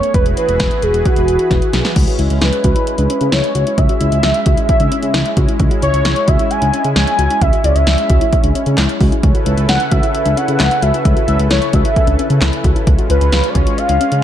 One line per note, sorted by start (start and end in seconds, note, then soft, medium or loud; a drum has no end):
0.00 0.13 A3 medium
0.00 0.13 B3 medium
0.00 0.13 C#4 medium
0.00 0.13 C#5 loud
0.00 closed hi-hat soft
0.14 0.24 E1 loud
0.14 1.94 E3 medium
0.14 1.94 E4 medium
0.14 1.94 F#4 medium
0.14 1.94 G#4 medium
0.14 0.25 B4 loud
0.14 1.94 B4 medium
0.14 kick loud
0.14 closed hi-hat medium
0.26 0.35 E1 medium
0.26 closed hi-hat soft
0.37 0.84 B4 loud
0.37 closed hi-hat medium
0.48 0.58 E1 loud
0.48 closed hi-hat medium
0.60 0.69 E1 loud
0.60 kick loud
0.60 snare loud
0.60 closed hi-hat medium
0.71 closed hi-hat medium
0.82 0.92 E1 medium
0.82 1.07 G#4 medium
0.82 closed hi-hat medium
0.94 1.03 E1 loud
0.94 closed hi-hat medium
1.05 1.73 F#4 medium
1.05 kick loud
1.05 closed hi-hat medium
1.16 1.26 E1 medium
1.16 closed hi-hat medium
1.28 1.38 E1 loud
1.28 closed hi-hat medium
1.39 closed hi-hat soft
1.51 1.60 E1 loud
1.51 kick loud
1.51 snare medium
1.51 closed hi-hat medium
1.62 closed hi-hat medium
1.73 1.83 B1 medium
1.73 snare medium
1.73 closed hi-hat medium
1.85 snare medium
1.85 closed hi-hat soft
1.96 2.06 C#2 loud
1.96 9.19 G#3 medium
1.96 12.83 C#4 medium
1.96 9.19 E4 medium
1.96 kick loud
1.96 closed hi-hat medium
1.96 crash loud
2.07 2.16 F#4 medium
2.07 closed hi-hat soft
2.19 2.28 C#2 loud
2.19 2.37 E4 medium
2.19 closed hi-hat medium
2.30 2.40 C#2 loud
2.30 closed hi-hat medium
2.41 2.51 C#2 loud
2.41 2.59 E4 medium
2.41 3.34 B4 medium
2.41 snare loud
2.41 closed hi-hat medium
2.53 closed hi-hat medium
2.64 2.74 C#2 loud
2.64 2.73 F#4 medium
2.64 kick medium
2.64 closed hi-hat medium
2.76 2.93 E4 medium
2.76 closed hi-hat medium
2.87 closed hi-hat medium
2.98 3.08 C#2 loud
2.98 3.07 D4 medium
2.98 closed hi-hat medium
3.10 3.27 C#4 medium
3.10 closed hi-hat medium
3.21 3.31 C#3 loud
3.21 closed hi-hat soft
3.32 3.42 C#2 loud
3.32 3.50 E4 medium
3.32 3.79 C#5 loud
3.32 snare loud
3.32 closed hi-hat medium
3.44 closed hi-hat medium
3.55 3.65 C#2 loud
3.55 3.64 F#4 medium
3.55 closed hi-hat medium
3.67 3.75 E4 medium
3.67 closed hi-hat soft
3.78 3.87 C#2 loud
3.78 4.68 E5 loud
3.78 kick loud
3.78 closed hi-hat medium
3.89 3.98 F#4 medium
3.89 closed hi-hat soft
4.01 4.10 C#2 loud
4.01 4.18 E4 medium
4.01 closed hi-hat medium
4.12 4.22 C#2 loud
4.12 closed hi-hat medium
4.23 4.33 C#2 loud
4.23 4.41 E4 medium
4.23 snare loud
4.23 closed hi-hat medium
4.34 closed hi-hat medium
4.46 4.56 C#2 loud
4.46 4.55 F#4 medium
4.46 kick medium
4.46 closed hi-hat medium
4.57 4.75 E4 medium
4.57 closed hi-hat medium
4.69 5.33 E5 loud
4.69 kick medium
4.69 closed hi-hat medium
4.80 4.90 C#2 medium
4.80 4.89 D4 medium
4.80 closed hi-hat medium
4.92 5.09 C#4 medium
4.92 closed hi-hat medium
5.03 5.12 C#3 medium
5.03 closed hi-hat soft
5.14 5.24 C#2 loud
5.14 5.32 E4 medium
5.14 snare loud
5.14 closed hi-hat medium
5.26 closed hi-hat medium
5.37 5.47 C#2 loud
5.37 5.46 F#4 medium
5.37 kick medium
5.37 closed hi-hat medium
5.48 5.57 E4 medium
5.48 closed hi-hat soft
5.60 5.69 C#2 loud
5.60 kick loud
5.60 closed hi-hat medium
5.71 5.80 F#4 medium
5.71 closed hi-hat soft
5.82 5.92 C#2 loud
5.82 6.00 E4 medium
5.82 6.29 C#5 loud
5.82 closed hi-hat medium
5.94 6.03 C#2 loud
5.94 closed hi-hat medium
6.05 6.15 C#2 loud
6.05 6.23 E4 medium
6.05 snare loud
6.05 closed hi-hat medium
6.16 closed hi-hat medium
6.28 6.38 C#2 loud
6.28 6.37 F#4 medium
6.28 6.52 E5 loud
6.28 kick medium
6.28 closed hi-hat medium
6.39 6.57 E4 medium
6.39 closed hi-hat medium
6.51 6.95 G#5 loud
6.51 closed hi-hat medium
6.62 6.72 C#2 loud
6.62 6.71 D4 medium
6.62 closed hi-hat medium
6.73 6.91 C#4 medium
6.73 closed hi-hat medium
6.84 6.94 C#3 medium
6.84 closed hi-hat soft
6.96 7.06 C#2 loud
6.96 7.14 E4 medium
6.96 7.43 G#5 loud
6.96 snare loud
6.96 closed hi-hat medium
7.07 closed hi-hat medium
7.19 7.28 C#2 loud
7.19 7.28 F#4 medium
7.19 closed hi-hat medium
7.30 7.39 E4 medium
7.30 closed hi-hat soft
7.42 7.51 C#2 loud
7.42 7.66 E5 loud
7.42 kick loud
7.42 closed hi-hat medium
7.53 7.62 F#4 medium
7.53 closed hi-hat soft
7.64 7.74 C#2 medium
7.64 7.82 E4 medium
7.64 7.77 D5 medium
7.64 closed hi-hat medium
7.75 7.85 C#2 loud
7.75 7.87 E5 medium
7.75 closed hi-hat medium
7.87 7.97 C#2 loud
7.87 8.05 E4 medium
7.87 8.51 E5 medium
7.87 snare loud
7.87 closed hi-hat medium
7.98 closed hi-hat medium
8.10 8.19 C#2 loud
8.10 8.19 F#4 medium
8.10 kick medium
8.10 closed hi-hat medium
8.21 8.39 E4 medium
8.21 closed hi-hat medium
8.33 kick medium
8.33 closed hi-hat medium
8.44 8.53 C#2 loud
8.44 8.53 D4 medium
8.44 closed hi-hat medium
8.55 8.73 C#4 medium
8.55 closed hi-hat medium
8.66 8.76 C#3 loud
8.66 closed hi-hat soft
8.78 8.87 C#2 loud
8.78 8.96 E4 medium
8.78 snare loud
8.78 clap medium
8.78 closed hi-hat medium
8.89 closed hi-hat medium
9.01 9.10 C#2 loud
9.01 9.10 F#4 medium
9.01 kick medium
9.01 open hi-hat medium
9.12 9.21 E4 medium
9.12 closed hi-hat soft
9.23 9.33 C#2 loud
9.23 12.83 C#3 medium
9.23 12.83 E4 medium
9.23 12.83 A4 medium
9.23 12.83 B4 medium
9.23 kick loud
9.23 closed hi-hat medium
9.35 9.44 F#4 medium
9.35 closed hi-hat soft
9.46 9.56 C#2 loud
9.46 9.64 E4 medium
9.46 closed hi-hat medium
9.57 9.67 C#2 loud
9.57 closed hi-hat medium
9.69 9.78 C#2 loud
9.69 9.87 E4 medium
9.69 9.93 F#5 loud
9.69 snare loud
9.69 closed hi-hat medium
9.80 closed hi-hat medium
9.91 10.01 C#2 loud
9.91 10.00 F#4 medium
9.91 10.38 E5 loud
9.91 kick medium
9.91 closed hi-hat medium
10.03 10.21 E4 medium
10.03 closed hi-hat medium
10.15 closed hi-hat medium
10.26 10.35 C#2 medium
10.26 10.35 D4 medium
10.26 closed hi-hat medium
10.37 10.55 C#4 medium
10.37 10.84 F#5 loud
10.37 closed hi-hat medium
10.48 10.58 C#3 loud
10.48 closed hi-hat soft
10.60 10.69 C#2 loud
10.60 10.77 E4 medium
10.60 snare loud
10.60 clap medium
10.60 closed hi-hat medium
10.71 closed hi-hat medium
10.82 10.92 C#2 loud
10.82 10.91 F#4 medium
10.82 11.27 E5 loud
10.82 closed hi-hat medium
10.94 11.03 E4 medium
10.94 closed hi-hat soft
11.05 11.15 C#2 loud
11.05 kick loud
11.05 closed hi-hat medium
11.17 11.25 F#4 medium
11.17 closed hi-hat medium
11.28 11.37 C#2 loud
11.28 11.46 E4 medium
11.28 11.38 E5 loud
11.28 closed hi-hat medium
11.39 11.49 C#2 medium
11.39 closed hi-hat medium
11.51 11.60 C#2 loud
11.51 11.68 E4 medium
11.51 11.75 C#5 medium
11.51 snare loud
11.51 closed hi-hat medium
11.62 closed hi-hat medium
11.73 11.83 C#2 loud
11.73 11.82 F#4 medium
11.73 12.64 E5 loud
11.73 kick medium
11.73 closed hi-hat medium
11.85 12.02 E4 medium
11.85 closed hi-hat medium
11.96 kick medium
11.96 closed hi-hat medium
12.07 12.17 C#2 loud
12.07 12.16 D4 medium
12.07 closed hi-hat medium
12.19 12.37 C#4 medium
12.19 closed hi-hat medium
12.30 12.40 C#3 loud
12.30 closed hi-hat medium
12.41 12.51 C#2 loud
12.41 12.59 E4 medium
12.41 snare loud
12.41 clap medium
12.41 closed hi-hat medium
12.53 closed hi-hat medium
12.64 12.74 C#2 loud
12.64 12.73 F#4 medium
12.64 kick medium
12.64 closed hi-hat medium
12.76 12.85 E4 medium
12.76 closed hi-hat soft
12.87 12.97 C#2 loud
12.87 14.23 G#3 medium
12.87 14.23 C#4 medium
12.87 14.23 F4 medium
12.87 kick loud
12.87 closed hi-hat medium
12.98 13.07 F#4 medium
12.98 closed hi-hat medium
13.10 13.19 C#2 medium
13.10 13.27 F4 medium
13.10 13.51 B4 loud
13.10 closed hi-hat medium
13.21 13.31 C#2 loud
13.21 closed hi-hat medium
13.32 13.42 C#2 medium
13.32 13.50 F4 medium
13.32 snare loud
13.32 closed hi-hat medium
13.44 closed hi-hat medium
13.50 13.57 D5 medium
13.55 13.65 C#2 loud
13.55 13.64 F#4 medium
13.55 13.79 C#5 loud
13.55 kick medium
13.55 closed hi-hat medium
13.67 13.84 F4 medium
13.67 closed hi-hat medium
13.78 14.23 F5 loud
13.78 closed hi-hat medium
13.89 13.99 C#2 loud
13.89 13.98 D4 medium
13.89 closed hi-hat medium
14.01 14.18 C#4 medium
14.01 closed hi-hat medium
14.12 14.22 C#3 loud
14.12 closed hi-hat soft